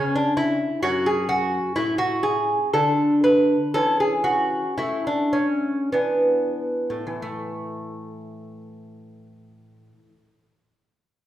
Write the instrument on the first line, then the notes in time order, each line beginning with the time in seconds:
lute
Already playing: C#3 C#4
0.15 D4
0.37 E4
0.83 F#2 C#4 F#4
1.06 G#4
1.29 F#4
1.76 A2 E4
1.98 F#4
2.23 G#4
2.73 D3 D4 A4
3.24 B4
3.74 E3 C#4 A4
4.00 G#4
4.24 F#4
4.78 A3 E4
5.07 D4
5.33 C#4
5.92 E3 B3 D4
6.90 A2
7.07 E3
7.22 A3